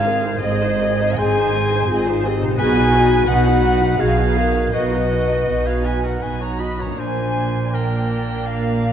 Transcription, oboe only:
0, 0, Header, 1, 2, 480
1, 0, Start_track
1, 0, Tempo, 750939
1, 265, Time_signature, 3, 2, 24, 8
1, 751, Tempo, 705053
1, 2671, Tempo, 748130
1, 5071, Tempo, 717703
1, 5868, End_track
2, 0, Start_track
2, 0, Title_t, "Oboe"
2, 0, Program_c, 0, 68
2, 0, Note_on_c, 0, 68, 85
2, 268, Note_off_c, 0, 68, 0
2, 274, Note_on_c, 0, 68, 87
2, 758, Note_on_c, 0, 72, 94
2, 768, Note_off_c, 0, 68, 0
2, 1478, Note_off_c, 0, 72, 0
2, 1715, Note_on_c, 0, 71, 127
2, 2159, Note_off_c, 0, 71, 0
2, 2192, Note_on_c, 0, 71, 92
2, 2675, Note_on_c, 0, 68, 98
2, 2684, Note_off_c, 0, 71, 0
2, 3149, Note_on_c, 0, 66, 88
2, 3158, Note_off_c, 0, 68, 0
2, 3742, Note_on_c, 0, 68, 70
2, 3751, Note_off_c, 0, 66, 0
2, 3864, Note_on_c, 0, 71, 67
2, 3874, Note_off_c, 0, 68, 0
2, 3978, Note_off_c, 0, 71, 0
2, 3982, Note_on_c, 0, 70, 56
2, 4099, Note_on_c, 0, 71, 66
2, 4109, Note_off_c, 0, 70, 0
2, 4216, Note_off_c, 0, 71, 0
2, 4220, Note_on_c, 0, 73, 55
2, 4342, Note_on_c, 0, 75, 62
2, 4351, Note_off_c, 0, 73, 0
2, 4468, Note_on_c, 0, 73, 63
2, 4477, Note_off_c, 0, 75, 0
2, 4592, Note_on_c, 0, 72, 80
2, 4602, Note_off_c, 0, 73, 0
2, 5073, Note_on_c, 0, 70, 66
2, 5084, Note_off_c, 0, 72, 0
2, 5553, Note_off_c, 0, 70, 0
2, 5557, Note_on_c, 0, 70, 69
2, 5859, Note_off_c, 0, 70, 0
2, 5868, End_track
0, 0, End_of_file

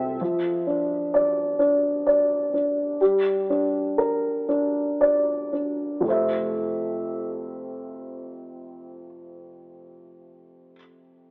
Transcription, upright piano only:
0, 0, Header, 1, 2, 480
1, 0, Start_track
1, 0, Key_signature, -1, "major"
1, 0, Tempo, 930233
1, 107, Time_signature, 6, 3, 24, 8
1, 1549, Tempo, 996678
1, 2509, Tempo, 1079137
1, 5317, End_track
2, 0, Start_track
2, 0, Title_t, "Upright piano"
2, 0, Program_c, 0, 0
2, 0, Control_c, 0, 64, 127
2, 0, Note_on_c, 0, 48, 49
2, 0, Note_on_c, 0, 60, 38
2, 0, Note_on_c, 0, 69, 42
2, 0, Note_on_c, 0, 72, 43
2, 86, Note_off_c, 0, 69, 0
2, 90, Note_off_c, 0, 48, 0
2, 95, Note_off_c, 0, 72, 0
2, 101, Note_off_c, 0, 60, 0
2, 109, Note_on_c, 0, 53, 51
2, 113, Control_c, 0, 64, 0
2, 191, Control_c, 0, 64, 127
2, 346, Note_on_c, 0, 62, 40
2, 589, Note_on_c, 0, 74, 44
2, 814, Note_off_c, 0, 62, 0
2, 821, Note_on_c, 0, 62, 43
2, 1058, Note_off_c, 0, 74, 0
2, 1065, Note_on_c, 0, 74, 41
2, 1300, Note_off_c, 0, 62, 0
2, 1308, Note_on_c, 0, 62, 36
2, 1530, Note_off_c, 0, 53, 0
2, 1538, Note_off_c, 0, 74, 0
2, 1545, Note_off_c, 0, 62, 0
2, 1551, Note_on_c, 0, 55, 47
2, 1555, Control_c, 0, 64, 0
2, 1627, Control_c, 0, 64, 127
2, 1788, Note_on_c, 0, 62, 36
2, 2020, Note_on_c, 0, 70, 38
2, 2256, Note_off_c, 0, 62, 0
2, 2263, Note_on_c, 0, 62, 39
2, 2514, Note_on_c, 0, 74, 38
2, 2739, Note_off_c, 0, 62, 0
2, 2746, Note_on_c, 0, 62, 34
2, 2958, Note_on_c, 0, 41, 37
2, 2962, Note_off_c, 0, 70, 0
2, 2963, Note_off_c, 0, 55, 0
2, 2969, Note_off_c, 0, 74, 0
2, 2969, Note_on_c, 0, 48, 35
2, 2974, Note_on_c, 0, 57, 36
2, 2975, Note_off_c, 0, 62, 0
2, 2984, Note_on_c, 0, 65, 34
2, 2985, Control_c, 0, 64, 0
2, 2992, Note_on_c, 0, 72, 34
2, 3000, Note_on_c, 0, 76, 38
2, 3073, Control_c, 0, 64, 127
2, 5059, Note_off_c, 0, 41, 0
2, 5070, Note_off_c, 0, 48, 0
2, 5072, Note_off_c, 0, 57, 0
2, 5077, Note_off_c, 0, 65, 0
2, 5081, Note_off_c, 0, 72, 0
2, 5085, Note_off_c, 0, 76, 0
2, 5317, End_track
0, 0, End_of_file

